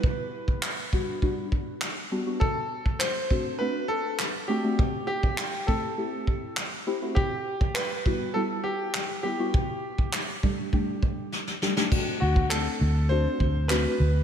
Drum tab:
CC |----------------|----------------|----------------|----------------|
CP |----x-------x---|----x-------x---|----x-------x---|----x-------x---|
SD |----o-------o---|----o-------o---|----o-------o---|----o-------o---|
BD |o--o--o-o-o-----|o--o--o---------|o--o--o---o-----|o--o--o---------|

CC |----------------|x---------------|
CP |----x-----------|----x-------x---|
SD |----o-------oooo|----o-------o---|
BD |o--o--o-o-o-----|o--o------o-----|